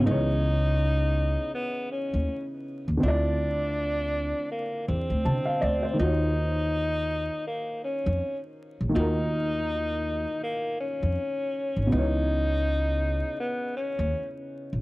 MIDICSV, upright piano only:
0, 0, Header, 1, 2, 480
1, 0, Start_track
1, 0, Tempo, 740741
1, 36, Time_signature, 4, 2, 24, 8
1, 9600, End_track
2, 0, Start_track
2, 0, Title_t, "Upright piano"
2, 0, Program_c, 0, 0
2, 0, Control_c, 0, 64, 127
2, 1, Note_on_c, 0, 49, 72
2, 18, Note_on_c, 0, 59, 64
2, 35, Note_on_c, 0, 63, 68
2, 44, Control_c, 0, 64, 0
2, 52, Note_on_c, 0, 52, 63
2, 70, Note_on_c, 0, 73, 86
2, 178, Control_c, 0, 64, 127
2, 1913, Note_off_c, 0, 49, 0
2, 1921, Note_off_c, 0, 59, 0
2, 1925, Note_on_c, 0, 50, 67
2, 1930, Note_off_c, 0, 63, 0
2, 1938, Note_off_c, 0, 52, 0
2, 1943, Note_on_c, 0, 60, 68
2, 1947, Note_off_c, 0, 73, 0
2, 1959, Note_on_c, 0, 64, 65
2, 1963, Control_c, 0, 64, 0
2, 1976, Note_on_c, 0, 65, 61
2, 1993, Note_on_c, 0, 74, 85
2, 2086, Control_c, 0, 64, 127
2, 3389, Note_off_c, 0, 74, 0
2, 3403, Note_on_c, 0, 81, 53
2, 3533, Note_off_c, 0, 81, 0
2, 3535, Note_on_c, 0, 77, 64
2, 3630, Note_off_c, 0, 77, 0
2, 3637, Note_on_c, 0, 74, 68
2, 3770, Note_off_c, 0, 74, 0
2, 3777, Note_on_c, 0, 72, 66
2, 3835, Note_off_c, 0, 50, 0
2, 3844, Note_off_c, 0, 60, 0
2, 3847, Note_on_c, 0, 51, 65
2, 3852, Note_off_c, 0, 64, 0
2, 3860, Note_off_c, 0, 65, 0
2, 3865, Note_on_c, 0, 58, 58
2, 3882, Note_on_c, 0, 65, 53
2, 3885, Control_c, 0, 64, 0
2, 3899, Note_on_c, 0, 66, 56
2, 3915, Note_on_c, 0, 73, 61
2, 3981, Control_c, 0, 64, 127
2, 4005, Note_off_c, 0, 72, 0
2, 5752, Note_off_c, 0, 51, 0
2, 5762, Note_on_c, 0, 51, 63
2, 5765, Note_off_c, 0, 58, 0
2, 5773, Note_off_c, 0, 65, 0
2, 5780, Note_on_c, 0, 58, 59
2, 5782, Note_off_c, 0, 66, 0
2, 5790, Note_off_c, 0, 73, 0
2, 5795, Note_on_c, 0, 65, 58
2, 5813, Note_on_c, 0, 66, 62
2, 5831, Note_on_c, 0, 70, 70
2, 7673, Note_off_c, 0, 51, 0
2, 7682, Note_off_c, 0, 58, 0
2, 7690, Note_off_c, 0, 65, 0
2, 7691, Note_on_c, 0, 49, 64
2, 7699, Note_off_c, 0, 66, 0
2, 7708, Note_off_c, 0, 70, 0
2, 7708, Note_on_c, 0, 59, 59
2, 7725, Control_c, 0, 64, 0
2, 7726, Note_on_c, 0, 63, 57
2, 7743, Note_on_c, 0, 52, 53
2, 7759, Note_on_c, 0, 73, 70
2, 7848, Control_c, 0, 64, 127
2, 9598, Note_off_c, 0, 49, 0
2, 9600, Note_off_c, 0, 52, 0
2, 9600, Note_off_c, 0, 59, 0
2, 9600, Note_off_c, 0, 63, 0
2, 9600, Note_off_c, 0, 73, 0
2, 9600, End_track
0, 0, End_of_file